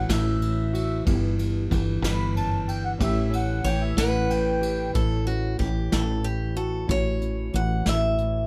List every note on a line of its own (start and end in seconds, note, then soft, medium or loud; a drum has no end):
0.00 0.39 A2 medium
0.00 1.70 E3 medium
0.00 1.03 C#4 medium
0.00 0.72 F#4 medium
0.00 0.11 F#5 loud
0.09 1.02 A1 loud
0.09 1.07 E4 medium
0.09 1.04 E5 medium
0.09 snare loud
0.09 ride medium
0.40 1.02 A2 medium
0.40 ride medium
0.73 1.06 F#4 medium
0.73 ride medium
1.05 1.68 G1 medium
1.05 2.33 G2 medium
1.05 1.38 B3 medium
1.05 3.00 E4 medium
1.05 2.97 G4 medium
1.05 kick medium
1.05 ride medium
1.39 2.97 B3 medium
1.39 ride soft
1.70 2.02 G1 medium
1.70 3.63 E3 medium
1.70 kick medium
1.70 ride medium
2.02 2.96 G1 loud
2.02 2.34 B5 loud
2.02 snare loud
2.02 ride medium
2.33 2.67 F#2 medium
2.33 2.70 A5 loud
2.33 ride medium
2.67 2.98 G2 medium
2.67 2.83 G5 medium
2.67 ride medium
2.85 2.92 F#5 medium
2.98 3.62 A1 loud
2.98 4.28 A2 medium
2.98 3.29 C#4 medium
2.98 3.95 E4 medium
2.98 4.60 G4 medium
2.98 kick medium
2.98 ride medium
3.03 3.35 E5 loud
3.30 4.89 C#4 medium
3.30 ride medium
3.35 3.67 F#5 medium
3.64 3.95 A1 medium
3.64 5.57 E3 medium
3.64 3.98 C#5 medium
3.64 3.82 G5 loud
3.64 ride medium
3.82 3.97 E5 medium
3.96 4.90 A1 loud
3.96 4.90 E4 medium
3.96 4.95 B4 loud
3.96 4.31 F#5 medium
3.96 snare loud
3.96 ride medium
4.30 4.90 A2 medium
4.30 4.91 G5 medium
4.30 ride medium
4.61 4.90 G4 medium
4.61 ride medium
4.93 5.57 A1 medium
4.93 6.23 A2 medium
4.93 5.27 C#4 medium
4.93 5.92 E4 medium
4.93 5.25 A4 medium
4.93 kick medium
4.93 closed hi-hat medium
5.27 6.85 C#4 medium
5.27 5.59 F#4 medium
5.27 closed hi-hat soft
5.58 5.90 A1 medium
5.58 7.52 E3 medium
5.58 5.92 G4 medium
5.58 kick medium
5.58 closed hi-hat soft
5.92 6.85 A1 medium
5.92 6.85 E4 medium
5.92 6.25 A4 medium
5.92 snare medium
5.92 closed hi-hat medium
6.24 6.85 A2 medium
6.24 6.54 G4 medium
6.24 closed hi-hat soft
6.57 6.89 F#4 medium
6.57 6.90 A4 medium
6.57 closed hi-hat soft
6.87 7.51 A1 medium
6.87 8.17 A2 medium
6.87 7.20 C#4 medium
6.87 7.85 E4 medium
6.87 8.47 F#4 medium
6.87 7.55 C#5 medium
6.87 kick medium
6.87 closed hi-hat medium
7.21 8.47 C#4 medium
7.21 closed hi-hat soft
7.53 7.85 A1 medium
7.53 8.47 E3 medium
7.53 7.85 F#5 medium
7.53 closed hi-hat soft
7.86 8.47 A1 medium
7.86 8.47 E4 medium
7.86 8.47 E5 medium
7.86 snare medium
7.86 closed hi-hat medium
8.18 8.47 A2 medium
8.18 closed hi-hat soft